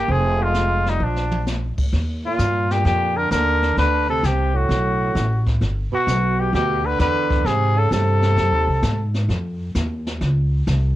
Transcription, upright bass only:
0.08 0.97 F1 medium
1.00 1.74 A#1 medium
1.78 muted upright bass stroke soft
1.93 2.37 D#2 medium
2.39 2.83 G2 medium
2.85 3.30 F2 medium
3.31 3.76 D#2 medium
3.77 4.22 D2 medium
4.23 4.68 C2 medium
4.69 5.14 B1 medium
5.15 5.60 A1 medium
5.61 5.90 G1 medium
5.92 muted upright bass stroke soft
6.07 6.52 B1 medium
6.53 6.98 D2 medium
6.99 7.44 E2 loud
7.45 7.90 G#2 medium
7.91 8.36 G2 medium
8.37 8.52 F#2 medium
8.52 8.67 D#2 medium
8.67 8.82 C2 medium
8.83 9.28 G#2 loud
9.29 9.74 F2 medium
9.75 10.20 D#2 medium
10.21 10.66 C#2 medium
10.67 10.96 C2 loud

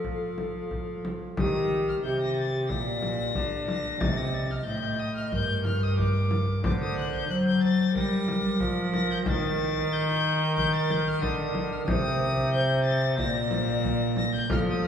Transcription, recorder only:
0.00 1.06 A4 medium
1.38 2.00 G4 medium
2.04 2.71 G4 medium
2.70 4.01 D5 medium
4.01 4.66 D#5 medium
4.66 5.31 D#5 medium
5.34 5.98 A#4 medium
5.99 6.63 A#4 medium
6.64 7.28 C5 medium
7.30 7.71 C5 medium
7.94 9.21 A#4 medium
9.25 9.90 A#4 medium
9.92 10.56 A#4 medium
10.57 11.21 A#4 loud
11.22 11.86 A#4 medium
11.89 12.53 C5 loud
12.54 13.20 C5 medium
13.19 14.22 D5 medium
14.51 14.88 A4 loud

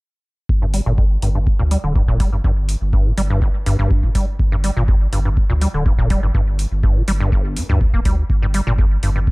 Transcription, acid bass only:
0.62 0.66 G2 medium
0.74 0.81 G3 medium
0.86 0.93 A#2 loud
0.98 1.05 F2 medium
1.22 1.29 G2 medium
1.35 1.39 G2 medium
1.59 1.63 A#2 loud
1.71 1.78 G3 medium
1.84 1.94 D3 medium
1.96 2.03 G2 medium
2.08 2.18 A#2 medium
2.20 2.30 G3 medium
2.33 2.37 G2 medium
2.44 2.51 G2 loud
2.93 3.07 G2 medium
3.06 3.12 A#2 loud
3.18 3.22 G3 loud
3.30 3.40 G2 loud
3.42 3.49 G1 loud
3.66 3.77 G2 loud
3.79 4.05 G2 loud
4.03 4.10 A#2 loud
4.15 4.26 G3 medium
4.52 4.56 G2 loud
4.64 4.71 G3 medium
4.77 4.83 A#2 loud
4.88 4.95 F2 medium
5.13 5.20 G2 medium
5.25 5.29 G2 medium
5.50 5.54 A#2 loud
5.62 5.68 G3 medium
5.74 5.84 D3 medium
5.86 5.93 G2 medium
5.99 6.08 A#2 loud
6.10 6.21 G3 medium
6.23 6.27 G2 medium
6.35 6.42 G2 loud
6.83 6.98 G2 medium
6.96 7.03 A#2 loud
7.08 7.12 G3 loud
7.20 7.30 G2 loud
7.32 7.58 G1 loud
7.57 7.64 G2 loud
7.69 7.79 G2 loud
7.94 8.00 A#3 medium
8.05 8.16 G3 medium
8.42 8.46 G2 loud
8.54 8.61 G3 medium
8.67 8.73 A#2 loud
8.79 8.86 F2 medium
9.03 9.10 G2 medium
9.16 9.19 G2 medium

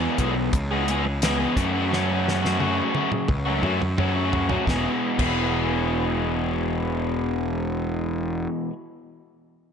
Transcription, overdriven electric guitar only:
0.00 0.53 E2 medium
0.00 0.52 B2 medium
0.00 0.17 E3 medium
0.00 0.17 G#3 medium
0.00 0.18 B3 medium
0.00 0.18 G#4 loud
0.18 0.35 E3 medium
0.18 0.36 G#3 medium
0.18 0.35 B3 medium
0.18 0.35 G#4 medium
0.36 muted overdriven electric guitar stroke medium
0.71 0.88 E3 medium
0.71 0.88 G#3 medium
0.71 0.89 B3 medium
0.71 0.90 G#4 medium
0.89 1.06 E3 medium
0.89 1.05 G#3 medium
0.89 1.05 B3 medium
0.89 1.05 G#4 medium
1.06 muted overdriven electric guitar stroke soft
1.23 1.55 E2 medium
1.23 1.55 B2 medium
1.23 1.41 E3 medium
1.23 1.40 G#3 medium
1.23 1.39 B3 medium
1.23 1.38 G#4 medium
1.40 1.55 E3 medium
1.40 1.55 G#3 medium
1.40 1.54 B3 medium
1.40 1.54 G#4 medium
1.56 1.89 F#2 medium
1.56 1.90 C#3 medium
1.56 1.75 F#3 medium
1.56 1.74 A3 medium
1.56 1.73 C#4 medium
1.56 1.72 F#4 medium
1.73 1.91 F#3 medium
1.73 1.91 A3 medium
1.73 1.91 C#4 medium
1.73 1.92 F#4 medium
1.90 2.57 F#2 medium
1.90 2.58 C#3 medium
1.90 2.44 F#3 medium
1.90 2.43 A3 medium
1.90 2.41 C#4 medium
1.90 2.41 F#4 medium
2.42 2.59 F#3 medium
2.42 2.59 A3 medium
2.42 2.59 C#4 medium
2.42 2.60 F#4 medium
2.58 3.28 F#2 medium
2.58 3.29 C#3 medium
2.58 2.92 F#3 medium
2.58 2.94 A3 medium
2.58 2.94 C#4 medium
2.58 2.95 F#4 medium
2.94 3.12 F#3 medium
2.94 3.11 A3 medium
2.94 3.11 C#4 medium
2.94 3.11 F#4 medium
3.12 muted overdriven electric guitar stroke soft
3.45 3.62 F#3 medium
3.45 3.64 A3 medium
3.45 3.64 C#4 medium
3.45 3.65 F#4 medium
3.63 3.81 F#3 medium
3.63 3.81 A3 medium
3.63 3.81 C#4 medium
3.63 3.80 F#4 medium
3.81 muted overdriven electric guitar stroke soft
3.98 4.50 F#2 medium
3.98 4.50 C#3 medium
3.98 4.16 F#3 medium
3.98 4.15 A3 medium
3.98 4.14 C#4 medium
3.98 4.13 F#4 medium
4.15 4.50 F#3 medium
4.15 4.50 A3 soft
4.15 4.49 C#4 medium
4.15 4.48 F#4 medium
4.49 4.66 F#3 soft
4.49 4.66 A3 soft
4.49 4.65 C#4 medium
4.49 4.65 F#4 medium
4.67 5.18 E2 medium
4.67 5.19 B2 medium
4.67 5.20 E3 medium
4.67 5.21 G#3 medium
4.67 5.22 B3 medium
4.71 5.22 G#4 medium
5.18 8.68 E2 medium
5.18 8.70 B2 medium
5.18 8.70 E3 medium
5.18 8.72 G#3 medium
5.18 8.72 B3 medium
5.23 8.73 G#4 medium

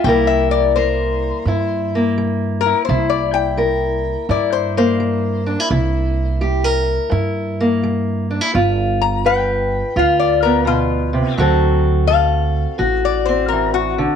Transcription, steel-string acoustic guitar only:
0.05 0.71 C3 medium
0.05 0.76 G3 medium
0.05 1.95 A#3 medium
0.05 1.47 E4 medium
0.05 0.76 A#4 medium
0.76 1.42 G3 medium
0.76 2.92 A#4 medium
1.47 2.13 G2 medium
1.47 2.65 E4 medium
1.95 4.76 A#3 medium
2.18 2.83 G3 medium
2.66 2.89 E4 medium
2.89 3.55 C3 medium
2.89 4.29 E4 medium
3.57 4.24 G3 medium
3.57 5.68 A#4 medium
4.29 4.96 G2 medium
4.29 5.46 E4 medium
4.77 7.59 A#3 medium
5.00 5.66 G3 medium
5.46 5.60 D4 medium
5.60 5.70 E4 soft
5.71 6.37 C3 medium
5.71 7.10 E4 medium
6.41 7.08 G3 medium
6.41 6.64 G4 medium
6.64 8.54 A#4 soft
7.10 7.78 G2 medium
7.10 8.30 E4 medium
7.60 8.54 A#3 medium
7.83 8.50 G3 medium
8.30 8.41 D4 medium
8.41 8.53 E4 soft
8.54 9.20 G2 medium
8.54 9.95 F4 medium
9.25 9.91 G3 medium
9.25 11.36 B4 medium
9.96 10.63 D3 medium
9.96 11.35 F4 medium
10.45 11.36 B3 medium
10.65 11.14 B2 medium
11.13 11.37 C3 medium
11.37 12.04 D3 medium
11.37 12.07 F#3 medium
11.37 13.28 C4 medium
11.37 12.77 F#4 medium
11.37 12.08 A4 medium
12.08 12.75 F#3 medium
12.08 14.16 A4 medium
12.78 13.45 A2 medium
12.78 14.16 F#4 medium
13.29 14.16 C4 medium
13.52 13.98 E3 medium
13.98 14.16 D3 medium

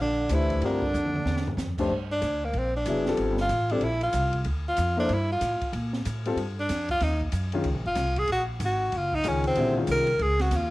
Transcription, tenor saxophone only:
0.01 0.35 D4 medium
0.34 0.64 E4 medium
0.66 1.56 D4 medium
2.12 2.46 D4 medium
2.45 2.60 A#3 medium
2.59 2.76 C4 medium
2.77 3.16 D4 medium
3.41 3.73 F4 loud
3.72 3.85 D4 medium
3.84 4.03 E4 medium
4.03 4.43 F4 medium
4.68 4.97 F4 medium
5.00 5.15 D4 medium
5.13 5.31 E4 medium
5.32 5.72 F4 medium
6.60 6.88 D4 medium
6.91 7.05 F4 loud
7.03 7.22 D#4 medium
7.87 8.20 F4 medium
8.19 8.30 G#4 loud
8.32 8.43 F#4 medium
8.65 8.99 F#4 medium
8.97 9.17 F4 medium
9.15 9.30 D#4 loud
9.28 9.47 C#4 medium
9.47 9.76 C4 loud
9.91 10.24 A#4 loud
10.22 10.43 G#4 loud
10.41 10.58 F#4 loud
10.56 10.70 F4 medium

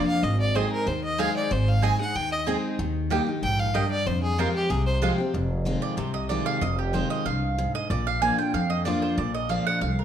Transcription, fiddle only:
0.07 0.24 F5 loud
0.23 0.40 D#5 medium
0.40 0.57 D5 loud
0.56 0.71 C5 medium
0.72 0.89 A#4 loud
0.87 1.03 C5 medium
1.04 1.20 D#5 medium
1.19 1.35 F5 loud
1.37 1.54 D5 medium
1.52 1.70 C5 medium
1.68 1.85 F5 medium
1.84 2.00 G#5 loud
2.01 2.17 F#5 loud
2.16 2.32 G5 loud
2.32 2.41 D#5 loud
3.43 3.61 G5 loud
3.59 3.76 F5 medium
3.75 3.90 D#5 medium
3.91 4.08 D5 loud
4.06 4.22 C5 medium
4.23 4.41 G#4 medium
4.39 4.55 A#4 medium
4.55 4.71 G4 medium
4.70 4.85 G#4 medium
4.86 4.95 C5 medium

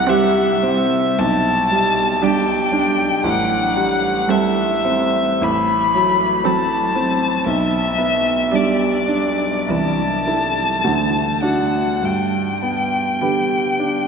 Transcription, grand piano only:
0.00 1.16 C2 medium
0.00 0.41 G3 soft
0.09 0.98 G4 medium
0.63 1.20 C4 soft
1.19 3.21 B1 medium
1.71 2.54 G3 soft
2.22 3.05 G4 soft
2.72 3.25 D4 soft
3.24 5.37 A1 medium
3.76 4.63 G3 soft
4.29 5.19 A4 soft
4.84 5.41 C4 soft
5.41 7.43 A1 medium
5.94 6.76 F#3 soft
6.44 7.26 A4 soft
6.95 7.47 C4 soft
7.46 9.65 B1 medium
7.98 8.86 B3 soft
8.52 9.45 G4 soft
9.08 9.68 D4 soft
9.68 10.81 C2 soft
10.27 10.81 E4 soft
10.27 10.81 A4 soft
10.84 12.00 D2 soft
11.42 11.98 D4 soft
11.42 11.99 F#4 soft
12.02 14.08 G2 soft
12.62 13.57 B3 soft
13.21 14.08 G4 soft
13.79 14.08 D4 soft

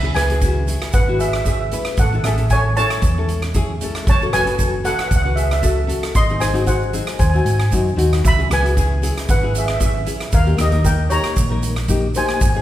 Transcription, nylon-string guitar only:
0.03 0.10 C#4 medium
0.03 0.10 E4 medium
0.03 0.11 G#4 medium
0.15 0.23 C#4 medium
0.15 0.24 E4 medium
0.15 0.24 G#4 medium
0.30 0.37 C#4 medium
0.30 0.37 E4 medium
0.30 0.38 G#4 medium
0.42 0.58 C#4 medium
0.42 0.58 E4 medium
0.42 0.59 F#4 medium
0.67 0.91 C#4 medium
0.67 0.92 E4 medium
0.67 0.92 G#4 medium
1.08 1.31 C#4 medium
1.08 1.31 E4 medium
1.08 1.32 F#4 medium
1.45 1.62 C#4 medium
1.45 1.62 E4 medium
1.45 1.63 G#4 medium
1.72 1.96 C#4 medium
1.72 1.96 E4 medium
1.72 1.96 B4 medium
2.13 2.19 C#4 medium
2.13 2.20 E4 medium
2.13 2.21 A4 medium
2.25 2.33 C#4 medium
2.25 2.33 E4 medium
2.25 2.34 A4 medium
2.38 2.45 C#4 medium
2.38 2.45 E4 medium
2.38 2.46 A4 medium
2.51 2.67 C#4 medium
2.51 2.67 E4 medium
2.51 2.68 A4 medium
2.77 3.00 C#4 medium
2.77 3.00 E4 medium
2.77 3.01 A4 medium
3.17 3.40 C#4 medium
3.17 3.40 E4 medium
3.17 3.41 A4 medium
3.55 3.71 C#4 medium
3.55 3.71 E4 medium
3.55 3.72 G#4 loud
3.82 4.05 C#4 medium
3.82 4.05 E4 medium
3.82 4.06 A4 loud
4.21 4.28 C#4 medium
4.21 4.29 F#4 medium
4.21 4.29 A4 medium
4.32 4.41 C#4 medium
4.32 4.42 F#4 medium
4.32 4.42 A4 medium
4.45 4.53 C#4 medium
4.45 4.54 F#4 medium
4.45 4.54 B4 medium
4.58 4.75 C#4 medium
4.58 4.76 F#4 medium
4.58 4.76 A4 medium
4.84 5.08 C#4 medium
4.84 5.08 F#4 medium
4.84 5.09 B4 medium
5.24 5.48 C#4 medium
5.24 5.48 F#4 medium
5.24 5.49 B4 medium
5.62 5.79 C#4 medium
5.62 5.79 F#4 medium
5.62 5.80 A4 medium
5.87 6.12 C#4 medium
5.87 6.12 F#4 medium
5.87 6.13 A4 medium
6.29 6.37 C4 medium
6.29 6.37 D#4 medium
6.29 6.37 G#4 medium
6.40 6.49 C4 medium
6.40 6.49 D#4 medium
6.40 6.50 G#4 medium
6.53 6.62 C4 medium
6.53 6.62 D#4 medium
6.53 6.62 F#4 medium
6.65 6.83 C4 medium
6.65 6.83 D#4 medium
6.65 6.84 F#4 medium
6.93 7.17 C4 medium
6.93 7.17 D#4 medium
6.93 7.18 G#4 medium
7.33 7.57 C4 medium
7.33 7.58 D#4 medium
7.33 7.58 F#4 medium
7.72 7.89 C4 medium
7.72 7.89 D#4 medium
7.72 7.89 F#4 medium
7.96 8.21 C4 medium
7.96 8.21 D#4 medium
7.96 8.22 F#4 medium
8.37 8.45 C#4 medium
8.37 8.45 E4 medium
8.37 8.46 G#4 medium
8.50 8.58 C#4 medium
8.50 8.59 E4 medium
8.50 8.59 G#4 medium
8.63 8.71 C#4 medium
8.63 8.71 E4 medium
8.63 8.72 F#4 medium
8.76 8.93 C#4 medium
8.76 8.93 E4 medium
8.76 8.94 G#4 medium
9.02 9.26 C#4 medium
9.02 9.26 E4 medium
9.02 9.27 G#4 medium
9.41 9.65 C#4 medium
9.41 9.66 E4 medium
9.41 9.67 G#4 medium
9.80 9.97 C#4 medium
9.80 9.97 E4 medium
9.80 9.98 G#4 medium
10.06 10.30 C#4 medium
10.06 10.31 E4 medium
10.06 10.31 G#4 medium
10.44 10.53 A#3 medium
10.44 10.54 D#4 medium
10.44 10.54 G4 medium
10.57 10.66 A#3 medium
10.57 10.67 D#4 medium
10.57 10.67 G4 medium
10.70 10.79 A#3 medium
10.70 10.79 D#4 medium
10.70 10.80 A#4 medium
10.84 11.01 A#3 medium
10.84 11.02 D#4 medium
10.84 11.02 A#4 medium
11.09 11.34 A#3 medium
11.09 11.34 D#4 medium
11.09 11.35 G4 medium
11.49 11.74 A#3 medium
11.49 11.74 D#4 medium
11.49 11.75 A#4 medium
11.89 12.05 A#3 medium
11.89 12.06 D#4 medium
11.89 12.06 G4 loud
12.15 12.39 A#3 medium
12.15 12.39 D#4 medium
12.15 12.40 G4 medium
12.54 12.62 C#4 medium
12.54 12.62 D#4 medium
12.54 12.62 G#4 medium

